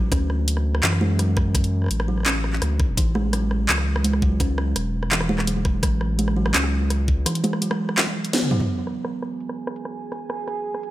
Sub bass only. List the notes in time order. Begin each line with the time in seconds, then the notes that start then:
Already playing: A1
0.12 D2
0.83 F#2
1.90 A1
2.62 D2
2.97 A1
3.69 C#2
4.76 E1
5.83 A1
6.54 C#2